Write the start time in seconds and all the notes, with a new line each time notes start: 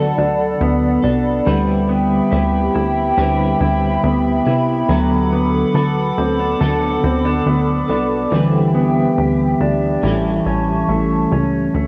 Already playing: D2 D3 F#3 B3 D4 F#4 A4 D5 F#5 B5
0.18 D2 D4
0.61 D2 B3
1.02 C2 B3 D4 F#4 A4
1.45 D2 D3 G3 C4 E4 G4 B4 E5 G5
1.89 B3
2.30 D2 G3 C4 E4 G4 B4
2.75 D2 E4
3.17 D2 D3 G3 C4 E4 G4 B4
3.61 D2 E4
4.03 D2 B3
4.45 C2 C4 E4 B4
4.88 D2 D3 F#3 B3 F#4 A4 F#5 D6
5.33 B3
5.74 D2 F#3 B3 F#4 A4
6.18 D2 C4
6.39 D4
6.60 D2 D3 F#3 B3 F#4 A4
7.03 D2 C4
7.25 D4
7.46 D2 B3
7.88 C2 B3 D4 F#4 A4
8.30 D2 D3 E3 G3 C4 G4 E5 G5
8.34 E4 B4
8.75 B3
9.18 D2 G4
9.60 D2 D4
10.01 A1 A2 E3 G3 C#4 A5 C#6
10.06 E4 A4
10.46 A1 C#4
10.88 A1 A3
11.32 C#2 C#4
11.74 D2 A3 F#4 D5 A5 D6